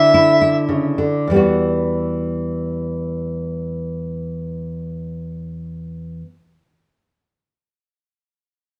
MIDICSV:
0, 0, Header, 1, 3, 480
1, 0, Start_track
1, 0, Key_signature, 1, "minor"
1, 0, Tempo, 574163
1, 1053, Time_signature, 3, 2, 24, 8
1, 1053, Tempo, 593472
1, 7145, End_track
2, 0, Start_track
2, 0, Title_t, "Harmonica"
2, 0, Program_c, 0, 22
2, 0, Note_on_c, 0, 76, 77
2, 537, Note_off_c, 0, 76, 0
2, 7145, End_track
3, 0, Start_track
3, 0, Title_t, "Nylon-string guitar"
3, 0, Program_c, 1, 24
3, 0, Note_on_c, 1, 50, 55
3, 0, Note_on_c, 1, 64, 57
3, 107, Note_off_c, 1, 64, 0
3, 118, Note_on_c, 1, 64, 55
3, 336, Note_off_c, 1, 64, 0
3, 346, Note_on_c, 1, 64, 51
3, 573, Note_on_c, 1, 49, 44
3, 809, Note_off_c, 1, 50, 0
3, 811, Note_off_c, 1, 49, 0
3, 820, Note_on_c, 1, 50, 45
3, 1059, Note_off_c, 1, 50, 0
3, 1065, Note_on_c, 1, 40, 40
3, 1085, Note_on_c, 1, 52, 38
3, 1096, Note_on_c, 1, 55, 40
3, 1119, Note_on_c, 1, 59, 37
3, 1133, Note_off_c, 1, 64, 0
3, 1136, Note_on_c, 1, 66, 37
3, 5064, Note_off_c, 1, 40, 0
3, 5084, Note_off_c, 1, 52, 0
3, 5095, Note_off_c, 1, 55, 0
3, 5118, Note_off_c, 1, 59, 0
3, 5135, Note_off_c, 1, 66, 0
3, 7145, End_track
0, 0, End_of_file